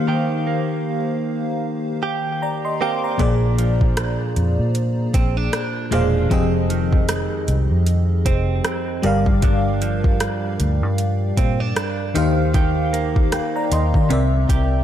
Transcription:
Already playing: D#3 A#3 G4 C5 F5
0.08 D#3 G4
0.47 A#3
2.03 G4
2.42 D5 A#5
2.65 D#5 C6
2.81 A#3 C4 G4 F5 D6
3.04 D5 A#5
3.18 A#1 A#2 A#3 D4 G#4 C5 D5, kick, closed hi-hat
3.58 F3, closed hi-hat
3.81 kick
3.97 cross-stick, closed hi-hat
4.36 F2, closed hi-hat
4.59 A#2
4.75 closed hi-hat
5.14 A#1 C4, kick, closed hi-hat
5.37 D4
5.53 cross-stick, closed hi-hat
5.91 E1 A#2 F3 G#3 A#3 D4 G#4 C5 F5, closed hi-hat
6.29 F1 F2 F3 C4 G4 G#4 D#5, kick, closed hi-hat
6.70 D#3, closed hi-hat
6.93 kick
7.09 cross-stick, closed hi-hat
7.48 C2, closed hi-hat
7.71 F2
7.86 closed hi-hat
8.26 F1 C4, kick, closed hi-hat
8.64 cross-stick, closed hi-hat
9.02 G1 G2 G3 G4 A#4 D5 F5, closed hi-hat
9.26 kick
9.42 G2 D4, kick, closed hi-hat
9.82 F3, closed hi-hat
10.04 kick
10.20 cross-stick, closed hi-hat
10.60 D2, closed hi-hat
10.83 G2
10.98 closed hi-hat
11.37 A#2 C4, kick, closed hi-hat
11.60 D4
11.76 cross-stick, closed hi-hat
12.14 D#2 D#3 D#4 G4 C5 F5, closed hi-hat
12.54 D#3 G4, kick, closed hi-hat
12.93 A#3, closed hi-hat
13.16 kick
13.32 A#4 G5, cross-stick, closed hi-hat
13.56 D5 A#5
13.72 D#2 D#5 C6, closed hi-hat
13.94 D#3 D5 A#5, kick
14.09 C2 C3 C4 A#4 D5 E5, closed hi-hat
14.49 C2 G4, kick, closed hi-hat

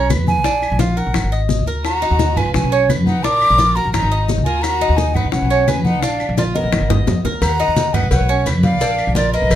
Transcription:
Already playing: B1
0.10 B4, high bongo, low bongo, high conga, claves, maracas
0.19 F2
0.27 G#5, high bongo, high conga, maracas
0.44 A#1 D4, high bongo, high conga, maracas
0.62 high bongo, high conga, claves, maracas
0.72 A#1
0.79 F4 F5, high bongo, high conga, maracas
0.97 A#4 F#5, high bongo, maracas
1.07 A#1
1.14 G#1, high bongo, high conga, claves, maracas
1.24 G#1
1.32 D#5, high conga, maracas
1.49 high bongo, low bongo, high conga, maracas
1.59 D2
1.67 A#4, high bongo, high conga, maracas
1.84 D#2 F#4 A#5, high bongo, high conga, claves, maracas
2.02 D#4, high bongo, high conga, maracas
2.11 D#2
2.19 high bongo, high conga, maracas
2.36 F4 B4 G#5, high bongo, high conga, low conga, claves, maracas
2.45 C#2
2.54 B1 C#4 G#5, high bongo, maracas
2.63 B1
2.72 C#4, high conga, maracas
2.89 B4, high bongo, low bongo, high conga, claves, maracas
2.98 F#2
3.05 D#4 F#5, high bongo, high conga, maracas
3.23 A#1 D4 A#4 D6, high bongo, high conga, maracas
3.41 high bongo, high conga, claves, maracas
3.50 A#1
3.58 F4, high bongo, high conga, maracas
3.76 F#4 A#4 A#5, high bongo, high conga, maracas
3.85 A#1
3.93 G#1 D#4 A#5, high bongo, high conga, claves, maracas
4.03 G#1
4.11 D#5, high conga, maracas
4.28 high bongo, low bongo, high conga, maracas
4.38 D2
4.44 F4 A#4 G#5, high bongo, maracas
4.62 D#2 F#4 A#5, high bongo, high conga, claves, maracas
4.81 D#4, high bongo, high conga, maracas
4.89 D#2
4.97 D#4 G#5, high bongo, high conga, maracas
5.14 D#4 B4 F#5, high bongo, high conga, low conga, claves, maracas
5.24 C#2
5.32 B1 C#4 F#5, high bongo, high conga, maracas
5.42 B1
5.50 C#4, maracas
5.67 C#4 B4 G#5, high bongo, low bongo, high conga, claves, maracas
5.77 F2
5.84 D#4 F#5, high bongo, high conga, maracas
6.02 A#1 D4 F5, high bongo, high conga, maracas
6.20 high bongo, high conga, claves, maracas
6.29 A#1
6.37 A#3 F4 D5, high bongo, high conga, maracas
6.54 B3 A#4 D#5, high bongo, high conga, maracas
6.64 A#1
6.72 G#1, high bongo, high conga, claves, maracas
6.81 G#1
6.90 D#5, high bongo, low conga, maracas
7.07 F2, low bongo, low conga, maracas
7.25 D#2 A#4, low bongo, low conga, maracas
7.42 D#2 F#5 A#5, cowbell, high conga, claves, maracas
7.60 D#4, high conga, maracas
7.68 D#2
7.76 cowbell, high conga, maracas
7.94 B4 D#5 F#5, cowbell, high conga, low conga, claves, maracas
8.03 C#2
8.11 B1 C#5 F#5, cowbell, maracas
8.20 B1
8.29 C#4, high conga, maracas
8.46 B4, cowbell, high conga, claves, maracas
8.55 F#2
8.63 D5 F5, cowbell, high conga, maracas
8.81 A#1 D4, cowbell, high conga, maracas
8.98 high conga, claves, maracas
9.07 A#1
9.15 F4 A#4 D5, cowbell, high conga, maracas
9.33 A#3 B4 D#5, high conga, maracas
9.42 A#1
9.50 G#1, cowbell, high conga, claves, maracas

